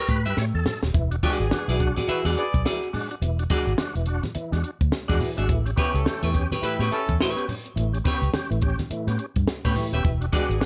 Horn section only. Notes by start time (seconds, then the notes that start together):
1.23 B3 D4 G4
1.41 B3 D4 G#4
2.09 F#4 G#4 B4
2.37 G#4 B4 D5
5.77 C#4 E4 G4
5.94 C#4 E4 A4
6.62 E4 G4 B4
6.91 C#4 E4 A4
10.33 B3 D4 G4
10.51 B3 D4 G#4